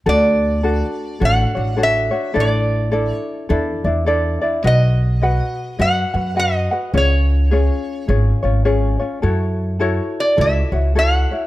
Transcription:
0.06 D2 D4 F#4 A4 D5
0.63 D4 F#4 A4
1.20 A1 D4 F#4 A4 C#5
1.25 F#5
1.55 A1 D4 F#4 C#5
1.76 D4 F#4 A4 C#5
1.83 E5
2.11 D4 F#4 C#5
2.34 A1 D4 E4 A4 D5
2.40 D5
2.92 D4 E4 A4 D5
3.11 C#5
3.49 E2 D4 E4 A4 D5
3.84 E2 D4 E4 D5
4.06 D4 E4 A4 D5
4.41 D4 E4 D5
4.63 B1 F#4 B4 D#5 F#5
5.22 F#4 B4 D#5 F#5
5.79 F#2 F#4 B4 D#5 F#5
6.14 F#2 F#4 B4 F#5
6.36 F#4 B4 D#5 F#5
6.71 F#4 B4 F#5
6.94 C#2 C#4 F4 G#4 C#5
7.51 C#4 F4 G#4 C#5
8.08 G#1 C#4 F4 G#4 C#5
8.43 G#1 C#4 F4 C#5
8.65 C#4 F4 G#4 C#5
8.99 C#4 F4 C#5
9.22 F#2 E4 F#4 A4 C#5
9.79 E4 F#4 A4 C#5
10.20 D5
10.37 C#2 E4 F#4 A4 C#5
10.41 E5
10.72 C#2 E4 F#4 C#5
10.95 E4 F#4 A4 C#5 F#5
11.31 E4 F#4 C#5

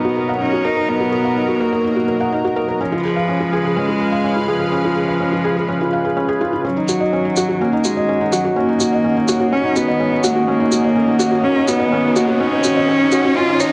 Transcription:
Already playing: B2 F#3 B3 C#4 D#4 F#4 A#4 D#5 F#5
0.05 F#4
0.17 A#4, shaker
0.29 F#5
0.41 C#4 D#4
0.53 F#4
0.65 D#4 A#4, shaker
0.77 A#4
0.89 B3 D#4
1.00 F#4
1.12 A#4, shaker
1.24 F#5
1.36 D#4
1.48 F#4
1.60 A#3 A#4, shaker
1.72 A#4
1.84 D#4
1.96 F#4
2.08 A#4, shaker
2.20 F#5
2.32 D#4
2.45 F#4
2.56 A#4, shaker
2.68 A#4
2.80 C#3 F3 C#4
2.91 G#3 F4 B4
3.04 G#4, shaker
3.16 F5
3.28 C#4
3.34 F5
3.40 F4
3.53 G#4, shaker
3.65 G#4
3.76 G#3 C#4
3.88 F4
4.00 G#4, shaker
4.12 F5
4.24 C#4
4.36 F4
4.48 F3 G#4, shaker
4.60 G#4
4.72 C#4
4.84 F4
4.96 G#4, shaker
5.08 F5
5.20 C#4
5.32 F4
5.44 G#4, shaker
5.57 G#4
5.68 C#4
5.81 F4
5.93 F5, shaker
6.05 G#4
6.17 C#4
6.29 G#4
6.40 F4, shaker
6.53 F4
6.63 D#3 F#3 C#4, riser
6.72 F#4
6.77 D#4
6.89 C#4 F#4, shaker
6.94 D#5
7.00 D#5
7.13 C#4
7.25 D#4
7.36 F#4, shaker
7.49 F#4
7.61 A#3 C#4
7.73 D#4
7.84 G#3 F#4, shaker
7.97 D#5
8.09 C#4
8.21 D#4
8.32 F#3 F#4, shaker
8.45 F#4
8.56 A#3 C#4
8.69 D#4
8.80 F#4, shaker
8.93 D#5
9.04 C#4
9.17 D#4
9.28 F#4, shaker
9.40 F#4
9.52 C#4
9.64 D#4
9.76 B3 F#4, shaker
9.88 D#5
10.00 C#4
10.12 D#4
10.24 A#3 F#4, shaker
10.35 F#4
10.48 A#3 C#4
10.60 D#4
10.72 F#4, shaker
10.84 D#5
10.96 C#4
11.08 D#4
11.19 F#4, shaker
11.31 F#4
11.43 C#4
11.56 D#4
11.68 B3 F#4, shaker
11.80 D#5
11.92 C#4
12.04 D#4
12.15 A#3 F#4, shaker
12.28 F#4
12.40 C#4
12.52 D#4
12.64 F#4, shaker
12.77 D#5
12.88 C#4
13.01 D#4
13.12 F#4, shaker
13.25 F#4
13.37 C#4 F4
13.48 D#4
13.60 D#4 C#5, shaker

